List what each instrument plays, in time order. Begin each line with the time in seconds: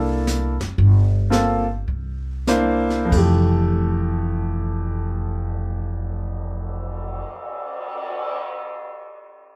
Already playing: upright bass C2, grand piano A#3 D4 E4 A4
0.27 snare, hi-hat pedal
0.60 upright bass F#1, snare
0.78 upright bass G1, brush sweep, kick
1.30 grand piano A#3 C4 F4 A4, snare, hi-hat pedal
1.88 upright bass C2, brush sweep, kick
2.47 grand piano A#3 D4 E4 C5, snare, hi-hat pedal
2.90 snare
3.05 grand piano F2
3.09 upright bass F1, grand piano E3 A3, kick, crash
3.17 grand piano G4
3.56 cymbal swell